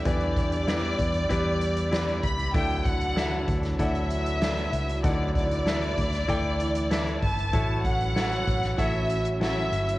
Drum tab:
HH |xxxxx-xxx-xxxxxx|xxxxx-xxxxxxxxxx|x-xxxxxxx-xxxxox|x-xxxxxxx-xxx-xx|
SD |----o-------o---|----o--o----o---|----o--o----o---|----o--o----o---|
BD |o-o---o-o-----o-|o-o---o-o-------|o-o---o-o-----o-|o-o---o-o-------|